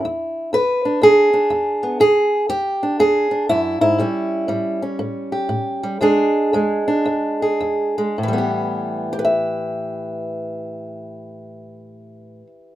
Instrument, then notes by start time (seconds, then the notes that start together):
steel-string acoustic guitar
Already playing: E4
0.05 E2
0.53 E2 B4
0.85 D4
1.02 E2 G#4
1.33 D4
1.50 E2
1.83 B3
2.00 E2 G#4
2.49 E2 G4
2.83 D4
2.99 E2 G#4
3.31 D4
3.49 F#2 E4
3.81 G#2 E4
3.98 A2 G3 C#4
4.48 A2 G3
4.82 C#4
4.99 A2
5.32 G4
5.49 A2
5.83 G3
6.01 E2 G#3 D4 G#4
6.53 E2 G#3
6.88 D4
7.06 E2
7.42 G#4
7.61 E2
7.98 G#3
8.18 A2
8.23 E3
8.28 G3
8.33 B3
8.38 G4
9.13 G4
9.19 B4
9.25 E5